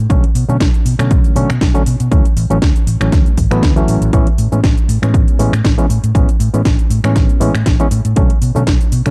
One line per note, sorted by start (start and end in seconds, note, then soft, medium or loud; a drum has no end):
0.10 0.18 B1 medium
0.10 0.23 D3 medium
0.10 0.23 F#3 medium
0.10 0.24 A3 medium
0.10 0.24 C#4 loud
0.10 kick loud
0.10 closed hi-hat medium
0.10 shaker soft
0.24 closed hi-hat medium
0.35 0.44 B2 medium
0.35 open hi-hat loud
0.35 shaker medium
0.49 0.56 B2 medium
0.49 0.56 D3 medium
0.49 0.56 F#3 medium
0.49 0.56 A3 medium
0.49 0.56 C#4 loud
0.49 shaker soft
0.60 0.69 B1 medium
0.60 kick loud
0.60 snare loud
0.60 closed hi-hat medium
0.60 shaker soft
0.74 closed hi-hat soft
0.74 shaker soft
0.86 0.94 B2 medium
0.86 open hi-hat loud
0.86 shaker medium
0.99 1.12 B2 loud
0.99 1.33 D3 medium
0.99 1.33 F#3 medium
0.99 1.33 A3 medium
0.99 1.33 C#4 medium
0.99 finger snap medium
0.99 closed hi-hat soft
0.99 shaker soft
1.11 1.19 B1 loud
1.11 kick loud
1.11 closed hi-hat medium
1.11 shaker soft
1.24 closed hi-hat soft
1.24 shaker soft
1.35 1.44 B2 loud
1.35 1.49 D3 medium
1.35 1.49 F#3 medium
1.35 1.50 A3 medium
1.35 1.50 C#4 medium
1.35 open hi-hat loud
1.35 shaker medium
1.50 1.57 B2 medium
1.50 finger snap medium
1.50 closed hi-hat soft
1.50 shaker soft
1.61 1.70 B1 loud
1.61 kick loud
1.61 snare loud
1.61 open hi-hat medium
1.61 shaker soft
1.74 1.82 D3 loud
1.74 1.82 F#3 medium
1.74 1.82 A3 medium
1.74 1.82 C#4 loud
1.74 closed hi-hat soft
1.74 shaker soft
1.86 1.95 B2 loud
1.86 open hi-hat loud
1.86 shaker medium
2.00 2.07 B2 medium
2.00 closed hi-hat medium
2.00 shaker soft
2.11 2.20 D2 medium
2.11 2.25 E3 medium
2.11 2.25 F#3 medium
2.11 2.25 A3 medium
2.11 2.25 C#4 loud
2.11 kick loud
2.11 closed hi-hat medium
2.11 shaker soft
2.25 closed hi-hat soft
2.25 shaker soft
2.37 2.45 A1 medium
2.37 open hi-hat loud
2.37 shaker medium
2.50 2.58 A1 medium
2.50 2.57 E3 medium
2.50 2.57 F#3 medium
2.50 2.58 A3 medium
2.50 2.58 C#4 loud
2.50 closed hi-hat soft
2.50 shaker soft
2.62 2.70 D2 medium
2.62 kick loud
2.62 snare loud
2.62 closed hi-hat medium
2.62 shaker soft
2.76 closed hi-hat soft
2.76 shaker soft
2.87 2.96 A1 medium
2.87 open hi-hat loud
2.87 shaker medium
3.00 3.08 A1 loud
3.00 3.35 E3 medium
3.00 3.35 F#3 medium
3.00 3.35 A3 medium
3.00 3.35 C#4 medium
3.00 finger snap medium
3.00 closed hi-hat soft
3.00 shaker soft
3.12 kick loud
3.12 snare medium
3.12 closed hi-hat medium
3.12 shaker soft
3.26 closed hi-hat soft
3.26 shaker soft
3.38 3.46 A1 medium
3.38 kick medium
3.38 open hi-hat loud
3.38 shaker medium
3.51 3.58 A1 loud
3.51 3.73 E3 loud
3.51 3.73 F#3 medium
3.51 3.73 A3 medium
3.51 3.73 B3 loud
3.51 finger snap medium
3.51 closed hi-hat soft
3.51 shaker soft
3.63 3.79 D2 medium
3.63 kick loud
3.63 snare loud
3.63 closed hi-hat medium
3.63 shaker soft
3.76 4.10 E3 medium
3.76 4.10 F#3 medium
3.76 4.11 A3 medium
3.76 4.11 C#4 loud
3.76 closed hi-hat soft
3.76 shaker soft
3.88 3.96 A1 medium
3.88 open hi-hat loud
3.88 shaker medium
4.01 4.09 A1 medium
4.01 closed hi-hat medium
4.01 shaker soft
4.13 4.27 E3 medium
4.13 4.27 G#3 medium
4.13 4.27 B3 medium
4.13 4.27 C#4 loud
4.13 kick loud
4.13 closed hi-hat medium
4.13 shaker soft
4.27 closed hi-hat medium
4.38 4.47 A2 medium
4.38 open hi-hat loud
4.38 shaker medium
4.52 4.59 A2 medium
4.52 4.59 E3 medium
4.52 4.59 G#3 medium
4.52 4.59 B3 medium
4.52 4.60 C#4 loud
4.52 shaker soft
4.64 4.72 A1 medium
4.64 kick loud
4.64 snare loud
4.64 closed hi-hat medium
4.64 shaker soft
4.77 closed hi-hat soft
4.77 shaker soft
4.89 4.97 A2 medium
4.89 open hi-hat loud
4.89 shaker medium
5.02 5.16 A2 loud
5.02 5.36 E3 medium
5.02 5.37 G#3 medium
5.02 5.37 B3 medium
5.02 5.37 C#4 medium
5.02 finger snap medium
5.02 closed hi-hat soft
5.02 shaker soft
5.14 5.22 A1 medium
5.14 kick loud
5.14 closed hi-hat medium
5.14 shaker soft
5.28 closed hi-hat soft
5.28 shaker soft
5.39 5.48 A2 loud
5.39 5.53 E3 medium
5.39 5.53 G#3 medium
5.39 5.53 B3 medium
5.39 5.53 C#4 medium
5.39 open hi-hat loud
5.39 shaker medium
5.53 5.60 A2 medium
5.53 finger snap medium
5.53 closed hi-hat soft
5.53 shaker soft
5.64 5.73 A1 loud
5.64 kick loud
5.64 snare loud
5.64 open hi-hat medium
5.64 shaker soft
5.78 5.85 E3 loud
5.78 5.85 G#3 medium
5.78 5.85 B3 medium
5.78 5.86 C#4 loud
5.78 closed hi-hat soft
5.78 shaker soft
5.90 5.98 A2 loud
5.90 open hi-hat loud
5.90 shaker medium
6.03 6.11 A2 medium
6.03 closed hi-hat medium
6.03 shaker soft
6.15 6.23 A1 loud
6.15 6.28 E3 medium
6.15 6.28 G#3 medium
6.15 6.29 B3 medium
6.15 6.29 C#4 loud
6.15 kick loud
6.15 closed hi-hat medium
6.15 shaker soft
6.29 closed hi-hat medium
6.29 shaker soft
6.40 6.48 A2 medium
6.40 open hi-hat loud
6.40 shaker medium
6.53 6.61 A2 medium
6.53 6.61 E3 medium
6.53 6.61 G#3 medium
6.53 6.61 B3 medium
6.53 6.61 C#4 loud
6.53 closed hi-hat soft
6.53 shaker soft
6.65 6.74 A1 medium
6.65 kick loud
6.65 snare loud
6.65 closed hi-hat medium
6.65 shaker soft
6.79 closed hi-hat soft
6.79 shaker soft
6.90 6.99 A2 medium
6.90 open hi-hat loud
6.90 shaker medium
7.04 7.17 A2 medium
7.04 7.38 E3 medium
7.04 7.38 G#3 medium
7.04 7.38 B3 medium
7.04 7.38 C#4 medium
7.04 finger snap medium
7.04 closed hi-hat soft
7.04 shaker soft
7.16 7.24 A1 medium
7.16 kick loud
7.16 snare medium
7.16 closed hi-hat medium
7.16 shaker soft
7.29 closed hi-hat soft
7.29 shaker soft
7.40 7.49 A2 loud
7.40 7.54 E3 medium
7.40 7.54 G#3 medium
7.40 7.54 B3 medium
7.40 7.55 C#4 loud
7.40 open hi-hat loud
7.40 shaker medium
7.54 7.62 A2 medium
7.54 finger snap medium
7.54 closed hi-hat soft
7.54 shaker soft
7.66 7.75 A1 medium
7.66 kick loud
7.66 snare loud
7.66 closed hi-hat medium
7.66 shaker soft
7.79 7.87 E3 loud
7.79 7.87 G#3 medium
7.79 7.87 B3 medium
7.79 7.87 C#4 loud
7.79 closed hi-hat soft
7.79 shaker soft
7.91 8.00 A2 loud
7.91 open hi-hat loud
7.91 shaker medium
8.05 8.12 A2 medium
8.05 closed hi-hat medium
8.05 shaker soft
8.16 8.25 B1 loud
8.16 8.30 D3 medium
8.16 8.30 F#3 medium
8.16 8.30 A3 medium
8.16 8.30 C#4 loud
8.16 kick loud
8.16 closed hi-hat medium
8.16 shaker soft
8.30 closed hi-hat medium
8.42 8.50 B2 medium
8.42 open hi-hat loud
8.42 shaker medium
8.55 8.62 B2 medium
8.55 8.62 D3 medium
8.55 8.62 F#3 medium
8.55 8.63 A3 medium
8.55 8.63 C#4 loud
8.55 shaker soft
8.67 8.75 B1 medium
8.67 kick loud
8.67 snare loud
8.67 closed hi-hat medium
8.67 shaker soft
8.81 closed hi-hat soft
8.81 shaker soft
8.92 9.01 B2 medium
8.92 open hi-hat loud
8.92 shaker medium
9.06 9.11 B2 loud
9.06 9.11 D3 medium
9.06 9.11 F#3 medium
9.06 9.11 A3 medium
9.06 9.11 C#4 medium
9.06 finger snap medium
9.06 closed hi-hat soft
9.06 shaker soft